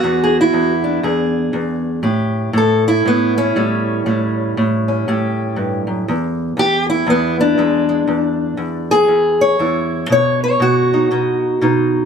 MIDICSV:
0, 0, Header, 1, 2, 480
1, 0, Start_track
1, 0, Tempo, 502934
1, 43, Time_signature, 4, 2, 24, 8
1, 11502, End_track
2, 0, Start_track
2, 0, Title_t, "Steel-string acoustic guitar"
2, 0, Program_c, 0, 25
2, 0, Note_on_c, 0, 66, 88
2, 0, Note_on_c, 0, 68, 73
2, 32, Note_on_c, 0, 40, 69
2, 38, Note_on_c, 0, 59, 49
2, 214, Note_off_c, 0, 68, 0
2, 225, Note_on_c, 0, 68, 76
2, 374, Note_off_c, 0, 68, 0
2, 389, Note_on_c, 0, 64, 90
2, 498, Note_off_c, 0, 40, 0
2, 509, Note_on_c, 0, 40, 82
2, 696, Note_off_c, 0, 66, 0
2, 800, Note_on_c, 0, 62, 41
2, 974, Note_off_c, 0, 40, 0
2, 986, Note_on_c, 0, 40, 78
2, 988, Note_off_c, 0, 64, 0
2, 992, Note_on_c, 0, 68, 52
2, 1449, Note_off_c, 0, 40, 0
2, 1460, Note_on_c, 0, 40, 79
2, 1931, Note_off_c, 0, 62, 0
2, 1933, Note_off_c, 0, 68, 0
2, 1934, Note_off_c, 0, 59, 0
2, 1935, Note_on_c, 0, 45, 75
2, 1940, Note_on_c, 0, 67, 45
2, 1950, Note_off_c, 0, 40, 0
2, 2414, Note_off_c, 0, 45, 0
2, 2418, Note_on_c, 0, 45, 80
2, 2446, Note_off_c, 0, 67, 0
2, 2459, Note_on_c, 0, 69, 80
2, 2740, Note_off_c, 0, 69, 0
2, 2747, Note_on_c, 0, 64, 91
2, 2911, Note_off_c, 0, 45, 0
2, 2915, Note_on_c, 0, 45, 75
2, 2935, Note_on_c, 0, 59, 85
2, 3217, Note_off_c, 0, 59, 0
2, 3223, Note_on_c, 0, 61, 91
2, 3384, Note_off_c, 0, 45, 0
2, 3396, Note_on_c, 0, 45, 77
2, 3402, Note_on_c, 0, 55, 52
2, 3406, Note_off_c, 0, 64, 0
2, 3863, Note_off_c, 0, 45, 0
2, 3866, Note_off_c, 0, 55, 0
2, 3874, Note_on_c, 0, 45, 71
2, 3879, Note_on_c, 0, 55, 47
2, 4353, Note_off_c, 0, 45, 0
2, 4364, Note_on_c, 0, 45, 76
2, 4648, Note_off_c, 0, 61, 0
2, 4659, Note_on_c, 0, 61, 39
2, 4836, Note_off_c, 0, 45, 0
2, 4847, Note_on_c, 0, 45, 72
2, 4852, Note_on_c, 0, 67, 48
2, 5310, Note_on_c, 0, 43, 65
2, 5598, Note_off_c, 0, 43, 0
2, 5602, Note_on_c, 0, 42, 61
2, 5779, Note_off_c, 0, 61, 0
2, 5781, Note_off_c, 0, 67, 0
2, 5793, Note_off_c, 0, 42, 0
2, 5796, Note_off_c, 0, 55, 0
2, 5801, Note_off_c, 0, 45, 0
2, 5806, Note_on_c, 0, 40, 81
2, 6265, Note_off_c, 0, 40, 0
2, 6268, Note_on_c, 0, 40, 77
2, 6292, Note_on_c, 0, 67, 116
2, 6575, Note_off_c, 0, 67, 0
2, 6582, Note_on_c, 0, 64, 91
2, 6740, Note_off_c, 0, 40, 0
2, 6744, Note_on_c, 0, 40, 78
2, 6776, Note_on_c, 0, 59, 89
2, 7057, Note_off_c, 0, 59, 0
2, 7068, Note_on_c, 0, 62, 90
2, 7221, Note_off_c, 0, 40, 0
2, 7232, Note_on_c, 0, 40, 70
2, 7240, Note_on_c, 0, 56, 56
2, 7243, Note_off_c, 0, 64, 0
2, 7518, Note_off_c, 0, 56, 0
2, 7529, Note_on_c, 0, 56, 45
2, 7694, Note_off_c, 0, 56, 0
2, 7695, Note_off_c, 0, 40, 0
2, 7706, Note_on_c, 0, 40, 65
2, 8171, Note_off_c, 0, 40, 0
2, 8182, Note_on_c, 0, 40, 82
2, 8498, Note_off_c, 0, 62, 0
2, 8505, Note_on_c, 0, 68, 111
2, 8655, Note_off_c, 0, 40, 0
2, 8666, Note_on_c, 0, 40, 69
2, 8984, Note_on_c, 0, 73, 87
2, 9145, Note_off_c, 0, 40, 0
2, 9155, Note_on_c, 0, 40, 76
2, 9158, Note_off_c, 0, 68, 0
2, 9162, Note_on_c, 0, 64, 50
2, 9616, Note_off_c, 0, 64, 0
2, 9633, Note_off_c, 0, 40, 0
2, 9636, Note_on_c, 0, 47, 76
2, 9645, Note_off_c, 0, 73, 0
2, 9662, Note_on_c, 0, 73, 102
2, 9941, Note_off_c, 0, 73, 0
2, 9960, Note_on_c, 0, 73, 82
2, 10110, Note_off_c, 0, 47, 0
2, 10114, Note_on_c, 0, 47, 75
2, 10136, Note_on_c, 0, 66, 91
2, 10437, Note_on_c, 0, 63, 44
2, 10597, Note_off_c, 0, 47, 0
2, 10601, Note_on_c, 0, 47, 69
2, 10603, Note_off_c, 0, 63, 0
2, 10607, Note_on_c, 0, 63, 47
2, 10614, Note_off_c, 0, 73, 0
2, 11073, Note_off_c, 0, 47, 0
2, 11081, Note_off_c, 0, 63, 0
2, 11085, Note_on_c, 0, 47, 77
2, 11093, Note_on_c, 0, 63, 51
2, 11502, Note_off_c, 0, 47, 0
2, 11502, Note_off_c, 0, 63, 0
2, 11502, Note_off_c, 0, 66, 0
2, 11502, End_track
0, 0, End_of_file